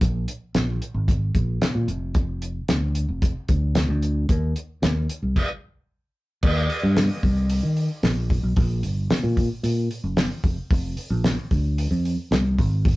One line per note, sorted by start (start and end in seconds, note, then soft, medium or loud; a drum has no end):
0.01 0.25 A#1 medium
0.01 kick medium
0.01 closed hi-hat medium
0.28 closed hi-hat medium
0.55 0.78 A#1 medium
0.55 snare loud
0.55 closed hi-hat medium
0.82 closed hi-hat medium
0.94 1.30 G#1 medium
1.08 kick loud
1.08 closed hi-hat medium
1.35 1.58 A#1 medium
1.35 kick medium
1.35 closed hi-hat medium
1.62 snare loud
1.62 closed hi-hat medium
1.75 1.87 A#2 medium
1.88 2.59 F1 loud
1.88 closed hi-hat soft
2.15 kick loud
2.15 closed hi-hat medium
2.42 closed hi-hat medium
2.68 3.04 D2 medium
2.68 snare loud
2.68 closed hi-hat medium
2.95 closed hi-hat medium
3.08 3.32 F1 medium
3.22 kick loud
3.22 closed hi-hat medium
3.48 3.84 D2 loud
3.48 kick medium
3.48 closed hi-hat medium
3.75 snare loud
3.75 closed hi-hat medium
3.89 4.24 D2 medium
4.02 closed hi-hat medium
4.29 4.53 D#2 medium
4.29 kick loud
4.29 closed hi-hat medium
4.56 closed hi-hat medium
4.82 5.06 D#2 medium
4.82 snare loud
4.82 closed hi-hat medium
5.09 closed hi-hat medium
5.22 5.35 C2 medium
5.36 kick medium
5.36 crash medium
6.43 6.67 D#2 medium
6.43 kick medium
6.43 crash medium
6.70 open hi-hat medium
6.83 7.07 G2 medium
6.96 snare loud
6.96 open hi-hat medium
7.23 7.59 C2 medium
7.23 kick medium
7.23 open hi-hat soft
7.50 open hi-hat medium
7.63 7.87 D#3 medium
7.77 open hi-hat medium
8.03 8.39 A#1 medium
8.03 snare medium
8.03 open hi-hat medium
8.30 kick medium
8.30 open hi-hat medium
8.43 8.55 B1 medium
8.56 8.81 A#1 loud
8.56 kick loud
8.56 open hi-hat medium
8.83 9.07 G1 medium
8.83 open hi-hat medium
9.10 snare loud
9.10 open hi-hat medium
9.23 9.48 A#2 loud
9.37 kick medium
9.37 open hi-hat medium
9.63 9.88 A#2 medium
9.63 open hi-hat medium
9.91 open hi-hat medium
10.04 10.28 F#1 medium
10.17 snare loud
10.17 open hi-hat medium
10.44 10.56 F1 medium
10.44 kick medium
10.44 open hi-hat soft
10.70 10.95 F1 medium
10.70 kick loud
10.70 open hi-hat medium
10.97 open hi-hat medium
11.10 11.35 A#1 loud
11.24 snare loud
11.24 open hi-hat medium
11.51 11.87 D2 medium
11.51 kick medium
11.51 open hi-hat medium
11.78 open hi-hat medium
11.91 12.15 F2 medium
12.05 open hi-hat soft
12.31 12.55 C2 medium
12.31 snare loud
12.31 open hi-hat medium
12.59 12.96 G#1 loud
12.59 kick medium
12.59 open hi-hat medium
12.85 kick loud
12.85 open hi-hat medium